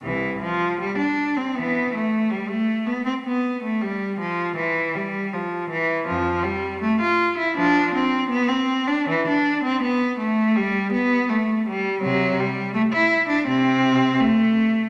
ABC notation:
X:1
M:4/4
L:1/16
Q:1/4=81
K:C
V:1 name="Cello"
[C,,E,]2 F,2 G, D2 C [E,B,]2 A,2 G, A,2 B, | C B,2 A, G,2 F,2 E,2 G,2 F,2 E,2 | [F,,F,]2 G,2 A, F2 E [F,D]2 C2 B, C2 D | E, D2 C B,2 A,2 G,2 B,2 A,2 G,2 |
[K:Clyd] [C,F,]2 G,2 A, E2 D [C,C]4 A,4 |]